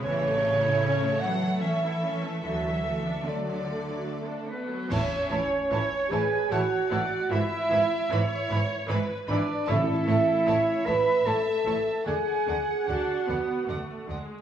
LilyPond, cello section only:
\new Staff \with { instrumentName = "Cello section" } { \clef bass \time 3/4 \key a \major \tempo 4 = 75 cis4. fis8 e4 | e4 d4. r8 | a,8 a,8 a,8 a,8 a,8 a,8 | gis,8 gis,8 gis,8 gis,8 gis,8 gis,8 |
a,8 a,8 a,8 a,8 a,8 a,8 | d8 d8 d8 d8 d8 d8 | }